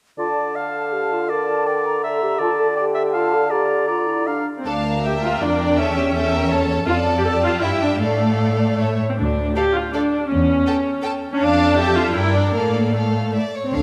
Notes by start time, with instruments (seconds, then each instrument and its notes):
0.18 bassoon D3, clarinet F4, oboe D5, flute section A5
0.38 clarinet A4
0.56 oboe F5
0.93 clarinet G4, flute section A5
1.13 clarinet F4
1.29 clarinet A#4, oboe D5
1.66 oboe D5, flute section G5
1.84 flute section A#5
2.03 clarinet A4, oboe E5
2.22 clarinet G4
2.39 bassoon D3, clarinet F4, oboe D5, flute section A5
2.59 clarinet A4
2.76 clarinet G4, oboe D5, flute section G5
2.95 oboe E5
3.13 clarinet F4, oboe F5, flute section A5
3.34 clarinet A4
3.50 clarinet G4, oboe D5, flute section A#5
3.88 clarinet F4, oboe D5
4.07 clarinet E4
4.26 clarinet D4, oboe F5, flute section A#5
4.58 viola section C4
4.66 cello section D2, viola section D4, violin section A4 F5 A5
4.85 violin section A#4
5.04 viola section G4, violin section E5 G5
5.23 viola section F4
5.41 cello section F2, viola section D4, violin section D5
5.60 violin section D5
5.78 cello section E2, viola section C#4, violin section A4 E5
5.96 violin section G4
6.15 violin section A4 E5 G5
6.34 violin section A#4
6.52 violin section A4 C#5 A5
6.71 violin section C#5
6.88 cello section F2, viola section F4, violin section A4 D5 A5
7.18 viola section G4
7.25 violin section G4 A5, viola section A4
7.44 viola section F4
7.63 cello section G2, viola section E4, violin section E5 G5
7.83 viola section D4
8.02 cello section A2, viola section A3, violin section A4 D5 F5
8.80 cello section A2, violin section A4 C#5 E5
9.10 viola section C4
9.18 cello section D2, viola section D4
9.56 viola section G4, violin section A4 D5 F5
9.74 viola section F4
9.93 viola section D4, violin section A4 D5 F5
10.30 cello section E2, viola section C#4
10.67 violin section A4 G5 A5
11.03 violin section A4 G5 A5
11.32 viola section C#4
11.40 cello section F2, viola section D4, violin section A4 F5 A5
11.77 viola section G4, violin section E5
11.96 viola section F4
12.15 cello section G2, viola section E4, violin section A#4 D5 G5
12.35 viola section D4
12.55 cello section A2, viola section A#3, violin section A4 D5 F5
12.94 viola section A3, violin section A4 F5
13.34 cello section A2, violin section D5 E5
13.54 violin section C#5
13.65 cello section C4
13.73 double bass section D2, cello section D4, viola section A4, violin section F5